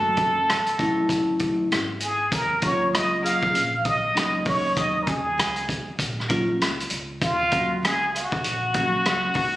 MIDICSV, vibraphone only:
0, 0, Header, 1, 2, 480
1, 0, Start_track
1, 0, Key_signature, -6, "minor"
1, 0, Tempo, 612245
1, 1816, Time_signature, 4, 2, 24, 8
1, 7498, End_track
2, 0, Start_track
2, 0, Title_t, "Vibraphone"
2, 0, Program_c, 0, 11
2, 0, Note_on_c, 0, 54, 63
2, 0, Note_on_c, 0, 57, 58
2, 0, Note_on_c, 0, 61, 61
2, 0, Note_on_c, 0, 66, 65
2, 252, Note_off_c, 0, 54, 0
2, 254, Note_off_c, 0, 57, 0
2, 255, Note_off_c, 0, 61, 0
2, 257, Note_off_c, 0, 66, 0
2, 611, Note_on_c, 0, 54, 90
2, 615, Note_on_c, 0, 57, 78
2, 617, Note_on_c, 0, 61, 88
2, 623, Note_on_c, 0, 64, 102
2, 1297, Note_off_c, 0, 54, 0
2, 1299, Note_off_c, 0, 57, 0
2, 1300, Note_off_c, 0, 61, 0
2, 1303, Note_off_c, 0, 64, 0
2, 2051, Note_on_c, 0, 54, 63
2, 2056, Note_on_c, 0, 58, 54
2, 2060, Note_on_c, 0, 61, 54
2, 2061, Note_on_c, 0, 65, 58
2, 2518, Note_off_c, 0, 54, 0
2, 2521, Note_off_c, 0, 58, 0
2, 2526, Note_off_c, 0, 61, 0
2, 2528, Note_on_c, 0, 54, 80
2, 2530, Note_on_c, 0, 58, 74
2, 2535, Note_on_c, 0, 61, 77
2, 2538, Note_on_c, 0, 68, 86
2, 2717, Note_off_c, 0, 54, 0
2, 2718, Note_off_c, 0, 58, 0
2, 2721, Note_off_c, 0, 61, 0
2, 2723, Note_off_c, 0, 68, 0
2, 2742, Note_off_c, 0, 65, 0
2, 3246, Note_on_c, 0, 54, 65
2, 3249, Note_on_c, 0, 58, 60
2, 3252, Note_on_c, 0, 61, 65
2, 3255, Note_on_c, 0, 63, 72
2, 3934, Note_off_c, 0, 54, 0
2, 3936, Note_off_c, 0, 58, 0
2, 3938, Note_off_c, 0, 61, 0
2, 3939, Note_off_c, 0, 63, 0
2, 4929, Note_on_c, 0, 54, 88
2, 4933, Note_on_c, 0, 58, 81
2, 4938, Note_on_c, 0, 61, 86
2, 4941, Note_on_c, 0, 65, 102
2, 5118, Note_off_c, 0, 54, 0
2, 5120, Note_off_c, 0, 58, 0
2, 5122, Note_off_c, 0, 61, 0
2, 5124, Note_off_c, 0, 65, 0
2, 5891, Note_on_c, 0, 54, 69
2, 5895, Note_on_c, 0, 58, 57
2, 5899, Note_on_c, 0, 61, 59
2, 5900, Note_on_c, 0, 66, 69
2, 6079, Note_off_c, 0, 54, 0
2, 6081, Note_off_c, 0, 58, 0
2, 6083, Note_off_c, 0, 61, 0
2, 6083, Note_off_c, 0, 66, 0
2, 6853, Note_on_c, 0, 53, 49
2, 6854, Note_on_c, 0, 58, 60
2, 6860, Note_on_c, 0, 61, 56
2, 6863, Note_on_c, 0, 66, 69
2, 6905, Note_on_c, 0, 54, 63
2, 6918, Note_off_c, 0, 53, 0
2, 7214, Note_off_c, 0, 58, 0
2, 7217, Note_off_c, 0, 61, 0
2, 7219, Note_off_c, 0, 66, 0
2, 7239, Note_off_c, 0, 54, 0
2, 7498, End_track
0, 0, End_of_file